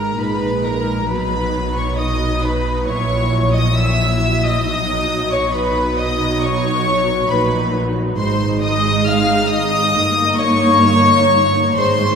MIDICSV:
0, 0, Header, 1, 6, 480
1, 0, Start_track
1, 0, Tempo, 892857
1, 590, Time_signature, 4, 2, 24, 8
1, 2500, Tempo, 883652
1, 5860, Tempo, 944882
1, 6529, End_track
2, 0, Start_track
2, 0, Title_t, "Violin section"
2, 0, Program_c, 0, 48
2, 0, Note_on_c, 0, 82, 89
2, 106, Note_off_c, 0, 82, 0
2, 106, Note_on_c, 0, 83, 92
2, 346, Note_on_c, 0, 82, 90
2, 350, Note_off_c, 0, 83, 0
2, 589, Note_off_c, 0, 82, 0
2, 595, Note_on_c, 0, 83, 95
2, 951, Note_off_c, 0, 83, 0
2, 952, Note_on_c, 0, 85, 86
2, 1064, Note_on_c, 0, 87, 92
2, 1070, Note_off_c, 0, 85, 0
2, 1300, Note_off_c, 0, 87, 0
2, 1306, Note_on_c, 0, 83, 90
2, 1542, Note_on_c, 0, 85, 97
2, 1545, Note_off_c, 0, 83, 0
2, 1893, Note_off_c, 0, 85, 0
2, 1905, Note_on_c, 0, 87, 105
2, 2020, Note_off_c, 0, 87, 0
2, 2025, Note_on_c, 0, 88, 104
2, 2381, Note_off_c, 0, 88, 0
2, 2388, Note_on_c, 0, 87, 108
2, 2864, Note_on_c, 0, 85, 101
2, 2866, Note_off_c, 0, 87, 0
2, 2980, Note_on_c, 0, 83, 95
2, 2982, Note_off_c, 0, 85, 0
2, 3217, Note_on_c, 0, 87, 108
2, 3221, Note_off_c, 0, 83, 0
2, 3457, Note_on_c, 0, 85, 113
2, 3461, Note_off_c, 0, 87, 0
2, 3938, Note_off_c, 0, 85, 0
2, 3938, Note_on_c, 0, 83, 95
2, 4178, Note_off_c, 0, 83, 0
2, 4418, Note_on_c, 0, 84, 105
2, 4643, Note_off_c, 0, 84, 0
2, 4665, Note_on_c, 0, 87, 113
2, 4893, Note_on_c, 0, 89, 113
2, 4906, Note_off_c, 0, 87, 0
2, 5130, Note_on_c, 0, 87, 127
2, 5137, Note_off_c, 0, 89, 0
2, 5608, Note_on_c, 0, 85, 127
2, 5611, Note_off_c, 0, 87, 0
2, 6328, Note_off_c, 0, 85, 0
2, 6332, Note_on_c, 0, 84, 119
2, 6529, Note_off_c, 0, 84, 0
2, 6529, End_track
3, 0, Start_track
3, 0, Title_t, "Violin section"
3, 0, Program_c, 1, 48
3, 0, Note_on_c, 1, 70, 80
3, 86, Note_off_c, 1, 70, 0
3, 99, Note_on_c, 1, 71, 79
3, 347, Note_off_c, 1, 71, 0
3, 349, Note_on_c, 1, 70, 76
3, 589, Note_on_c, 1, 71, 75
3, 590, Note_off_c, 1, 70, 0
3, 941, Note_off_c, 1, 71, 0
3, 952, Note_on_c, 1, 73, 79
3, 1068, Note_on_c, 1, 75, 90
3, 1070, Note_off_c, 1, 73, 0
3, 1305, Note_on_c, 1, 71, 78
3, 1307, Note_off_c, 1, 75, 0
3, 1544, Note_off_c, 1, 71, 0
3, 1545, Note_on_c, 1, 73, 89
3, 1897, Note_on_c, 1, 75, 84
3, 1902, Note_off_c, 1, 73, 0
3, 2019, Note_off_c, 1, 75, 0
3, 2026, Note_on_c, 1, 76, 91
3, 2380, Note_on_c, 1, 75, 90
3, 2382, Note_off_c, 1, 76, 0
3, 2862, Note_off_c, 1, 75, 0
3, 2866, Note_on_c, 1, 73, 82
3, 2983, Note_off_c, 1, 73, 0
3, 2983, Note_on_c, 1, 71, 92
3, 3217, Note_off_c, 1, 71, 0
3, 3222, Note_on_c, 1, 75, 93
3, 3463, Note_off_c, 1, 75, 0
3, 3471, Note_on_c, 1, 73, 97
3, 3946, Note_off_c, 1, 73, 0
3, 3947, Note_on_c, 1, 71, 83
3, 4183, Note_off_c, 1, 71, 0
3, 4417, Note_on_c, 1, 72, 88
3, 4643, Note_off_c, 1, 72, 0
3, 4657, Note_on_c, 1, 75, 102
3, 4897, Note_off_c, 1, 75, 0
3, 4909, Note_on_c, 1, 77, 104
3, 5137, Note_on_c, 1, 75, 102
3, 5145, Note_off_c, 1, 77, 0
3, 5605, Note_off_c, 1, 75, 0
3, 5623, Note_on_c, 1, 73, 113
3, 6335, Note_off_c, 1, 73, 0
3, 6338, Note_on_c, 1, 72, 102
3, 6529, Note_off_c, 1, 72, 0
3, 6529, End_track
4, 0, Start_track
4, 0, Title_t, "Viola section"
4, 0, Program_c, 2, 48
4, 0, Note_on_c, 2, 56, 72
4, 0, Note_on_c, 2, 63, 68
4, 83, Note_off_c, 2, 56, 0
4, 85, Note_off_c, 2, 63, 0
4, 94, Note_on_c, 2, 63, 65
4, 95, Note_on_c, 2, 56, 62
4, 573, Note_off_c, 2, 63, 0
4, 576, Note_off_c, 2, 56, 0
4, 580, Note_on_c, 2, 54, 67
4, 580, Note_on_c, 2, 63, 67
4, 1053, Note_off_c, 2, 54, 0
4, 1053, Note_off_c, 2, 63, 0
4, 1064, Note_on_c, 2, 54, 70
4, 1065, Note_on_c, 2, 63, 69
4, 1533, Note_off_c, 2, 54, 0
4, 1534, Note_off_c, 2, 63, 0
4, 1547, Note_on_c, 2, 64, 65
4, 1548, Note_on_c, 2, 54, 72
4, 2010, Note_off_c, 2, 64, 0
4, 2013, Note_off_c, 2, 54, 0
4, 2017, Note_on_c, 2, 64, 69
4, 2019, Note_on_c, 2, 54, 71
4, 2488, Note_off_c, 2, 64, 0
4, 2489, Note_off_c, 2, 54, 0
4, 2500, Note_on_c, 2, 54, 75
4, 2500, Note_on_c, 2, 63, 75
4, 2972, Note_off_c, 2, 54, 0
4, 2977, Note_off_c, 2, 63, 0
4, 2983, Note_on_c, 2, 54, 79
4, 2983, Note_on_c, 2, 63, 77
4, 3923, Note_off_c, 2, 54, 0
4, 3923, Note_off_c, 2, 63, 0
4, 3940, Note_on_c, 2, 54, 78
4, 3941, Note_on_c, 2, 63, 76
4, 4408, Note_off_c, 2, 54, 0
4, 4409, Note_off_c, 2, 63, 0
4, 4418, Note_on_c, 2, 56, 82
4, 4418, Note_on_c, 2, 63, 87
4, 5359, Note_off_c, 2, 56, 0
4, 5359, Note_off_c, 2, 63, 0
4, 5375, Note_on_c, 2, 63, 89
4, 5377, Note_on_c, 2, 58, 89
4, 6312, Note_off_c, 2, 63, 0
4, 6326, Note_on_c, 2, 56, 98
4, 6328, Note_on_c, 2, 63, 89
4, 6331, Note_off_c, 2, 58, 0
4, 6529, Note_off_c, 2, 56, 0
4, 6529, Note_off_c, 2, 63, 0
4, 6529, End_track
5, 0, Start_track
5, 0, Title_t, "Cello section"
5, 0, Program_c, 3, 48
5, 0, Note_on_c, 3, 44, 70
5, 78, Note_off_c, 3, 44, 0
5, 94, Note_on_c, 3, 46, 63
5, 576, Note_off_c, 3, 46, 0
5, 595, Note_on_c, 3, 47, 72
5, 1548, Note_off_c, 3, 47, 0
5, 1549, Note_on_c, 3, 46, 78
5, 2497, Note_on_c, 3, 47, 74
5, 2502, Note_off_c, 3, 46, 0
5, 3919, Note_off_c, 3, 47, 0
5, 3937, Note_on_c, 3, 46, 75
5, 4407, Note_off_c, 3, 46, 0
5, 4420, Note_on_c, 3, 44, 90
5, 5361, Note_off_c, 3, 44, 0
5, 5376, Note_on_c, 3, 43, 89
5, 6322, Note_on_c, 3, 44, 95
5, 6330, Note_off_c, 3, 43, 0
5, 6529, Note_off_c, 3, 44, 0
5, 6529, End_track
6, 0, Start_track
6, 0, Title_t, "Double bass section"
6, 0, Program_c, 4, 48
6, 0, Note_on_c, 4, 32, 69
6, 79, Note_off_c, 4, 32, 0
6, 97, Note_on_c, 4, 34, 62
6, 578, Note_off_c, 4, 34, 0
6, 586, Note_on_c, 4, 35, 73
6, 1539, Note_on_c, 4, 34, 77
6, 1543, Note_off_c, 4, 35, 0
6, 2497, Note_off_c, 4, 34, 0
6, 2498, Note_on_c, 4, 35, 81
6, 3919, Note_off_c, 4, 35, 0
6, 3935, Note_on_c, 4, 34, 78
6, 4406, Note_off_c, 4, 34, 0
6, 4410, Note_on_c, 4, 32, 90
6, 5356, Note_off_c, 4, 32, 0
6, 5369, Note_on_c, 4, 31, 93
6, 6321, Note_on_c, 4, 32, 99
6, 6327, Note_off_c, 4, 31, 0
6, 6529, Note_off_c, 4, 32, 0
6, 6529, End_track
0, 0, End_of_file